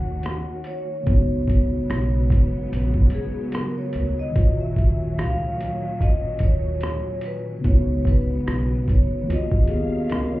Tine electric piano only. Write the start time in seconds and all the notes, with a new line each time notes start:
Already playing: D#3 A#3 D#4 F#4 C#5
1.03 C#3 B3
1.08 D#4 F#4
1.14 C#5
4.31 A#2 D#3
4.36 F4 F#4
4.42 C#5
7.59 C#3 B3
7.64 D#4 F4
7.69 F#4 C#5
9.23 D#3 A#3
9.29 F4 F#4
9.34 C#5
9.63 G4
9.69 B3 G#4
10.10 C#4 A#4
10.33 F4 C#5